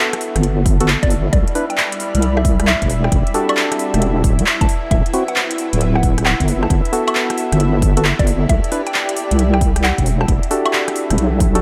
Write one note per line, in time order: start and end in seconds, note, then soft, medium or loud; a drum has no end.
0.00 3.73 G3 medium
0.00 0.78 B3 medium
0.00 0.15 D4 medium
0.00 11.62 E4 medium
0.00 0.78 F#4 medium
0.00 0.15 A4 medium
0.00 0.78 A4 medium
0.00 3.73 D5 medium
0.00 11.62 E5 medium
0.00 1.97 A5 medium
0.13 cross-stick medium
0.13 closed hi-hat medium
0.21 open hi-hat medium
0.36 0.97 G1 loud
0.36 cross-stick medium
0.36 closed hi-hat medium
0.43 closed hi-hat medium
0.66 kick loud
0.66 open hi-hat loud
0.80 0.90 B3 loud
0.80 0.90 F#4 medium
0.80 0.90 A4 loud
0.80 closed hi-hat medium
0.88 clap loud
1.03 1.30 G1 loud
1.03 1.17 D5 medium
1.03 kick loud
1.03 closed hi-hat medium
1.10 open hi-hat loud
1.33 1.44 C2 loud
1.33 1.51 D5 loud
1.33 kick loud
1.33 closed hi-hat medium
1.48 closed hi-hat soft
1.55 1.65 D4 medium
1.55 1.65 E4 medium
1.55 1.65 B4 loud
1.55 open hi-hat loud
1.70 1.84 G5 medium
1.70 closed hi-hat soft
1.78 clap loud
1.92 closed hi-hat medium
2.00 open hi-hat medium
2.15 2.76 C2 loud
2.15 closed hi-hat medium
2.22 closed hi-hat medium
2.37 2.51 E5 medium
2.37 cross-stick medium
2.45 kick loud
2.45 open hi-hat loud
2.60 cross-stick medium
2.60 closed hi-hat medium
2.67 2.85 E5 loud
2.67 clap loud
2.82 3.09 E1 medium
2.82 kick medium
2.82 closed hi-hat medium
2.90 5.55 E4 medium
2.90 open hi-hat loud
3.04 3.12 G5 medium
3.04 cross-stick medium
3.12 3.23 E1 loud
3.12 kick loud
3.12 closed hi-hat medium
3.27 closed hi-hat soft
3.34 4.22 D4 medium
3.34 4.22 F#4 medium
3.34 4.22 G4 medium
3.34 4.22 A4 medium
3.34 open hi-hat loud
3.47 5.55 B4 medium
3.47 3.57 D5 medium
3.47 cross-stick soft
3.47 closed hi-hat soft
3.47 high woodblock medium
3.57 clap loud
3.72 cross-stick medium
3.72 closed hi-hat medium
3.79 open hi-hat medium
3.94 4.23 E1 loud
3.94 cross-stick medium
3.94 closed hi-hat medium
4.02 closed hi-hat medium
4.24 4.40 D1 loud
4.24 kick loud
4.24 open hi-hat loud
4.39 4.44 E2 medium
4.39 closed hi-hat medium
4.46 clap loud
4.61 4.67 E1 medium
4.61 4.75 A5 medium
4.61 kick loud
4.61 closed hi-hat medium
4.69 open hi-hat medium
4.91 5.02 D1 loud
4.91 7.24 D4 medium
4.91 5.09 E5 loud
4.91 kick loud
4.91 closed hi-hat medium
5.06 closed hi-hat soft
5.14 5.24 C4 medium
5.14 5.24 E4 medium
5.14 5.24 F#4 loud
5.14 open hi-hat loud
5.28 5.42 F#5 loud
5.28 closed hi-hat soft
5.36 7.31 A4 medium
5.36 clap loud
5.51 closed hi-hat medium
5.58 open hi-hat medium
5.73 6.34 D1 loud
5.73 closed hi-hat medium
5.81 closed hi-hat medium
5.95 6.09 F#5 medium
5.95 cross-stick medium
6.03 kick loud
6.03 open hi-hat loud
6.18 cross-stick medium
6.18 closed hi-hat medium
6.26 6.44 F#5 medium
6.26 clap loud
6.40 6.67 G1 medium
6.40 kick medium
6.40 closed hi-hat medium
6.48 10.73 G4 medium
6.48 open hi-hat medium
6.63 6.70 A5 medium
6.63 cross-stick medium
6.67 6.81 G1 loud
6.67 10.89 D5 medium
6.67 kick loud
6.67 closed hi-hat medium
6.85 closed hi-hat soft
6.93 7.94 B3 medium
6.93 7.94 F#4 medium
6.93 7.94 A4 medium
6.93 open hi-hat loud
7.07 7.15 E5 medium
7.07 cross-stick soft
7.07 closed hi-hat soft
7.07 high woodblock medium
7.13 9.13 A5 medium
7.13 clap loud
7.30 cross-stick medium
7.30 closed hi-hat medium
7.38 open hi-hat medium
7.52 8.13 G1 loud
7.52 cross-stick medium
7.52 closed hi-hat medium
7.60 closed hi-hat medium
7.82 kick loud
7.82 open hi-hat loud
7.97 8.06 B3 medium
7.97 8.06 F#4 medium
7.97 8.06 A4 loud
7.97 closed hi-hat medium
8.05 clap loud
8.19 8.46 G1 medium
8.19 8.33 D5 loud
8.19 kick loud
8.19 closed hi-hat medium
8.27 open hi-hat loud
8.49 8.60 C2 loud
8.49 8.67 E5 loud
8.49 kick loud
8.49 closed hi-hat medium
8.64 closed hi-hat soft
8.72 8.82 D4 medium
8.72 8.82 E4 medium
8.72 8.82 B4 loud
8.72 open hi-hat loud
8.87 9.01 G5 loud
8.87 closed hi-hat soft
8.94 clap loud
9.09 closed hi-hat medium
9.17 open hi-hat medium
9.31 9.92 C2 loud
9.31 closed hi-hat medium
9.39 closed hi-hat medium
9.54 9.68 G5 medium
9.54 cross-stick medium
9.61 kick loud
9.61 open hi-hat loud
9.76 cross-stick medium
9.76 closed hi-hat medium
9.84 10.02 F#5 loud
9.84 clap loud
9.98 10.25 E1 medium
9.98 kick medium
9.98 closed hi-hat medium
10.06 11.62 E4 medium
10.06 open hi-hat loud
10.21 10.28 A5 medium
10.21 cross-stick medium
10.28 10.39 E1 loud
10.28 kick loud
10.28 closed hi-hat medium
10.34 11.62 F#5 medium
10.43 closed hi-hat soft
10.51 11.52 D4 medium
10.51 11.52 F#4 medium
10.51 11.52 G4 medium
10.51 11.52 A4 medium
10.51 open hi-hat loud
10.60 11.62 B4 loud
10.65 10.73 E5 medium
10.65 cross-stick soft
10.65 closed hi-hat soft
10.65 high woodblock medium
10.73 clap loud
10.88 cross-stick medium
10.88 closed hi-hat medium
10.96 open hi-hat medium
11.10 11.17 E1 loud
11.10 cross-stick medium
11.10 closed hi-hat medium
11.18 11.62 B1 medium
11.18 closed hi-hat medium
11.40 kick loud
11.40 open hi-hat loud
11.55 11.62 D4 loud
11.55 11.62 F#4 medium
11.55 11.62 G4 medium
11.55 11.62 A4 loud
11.55 closed hi-hat medium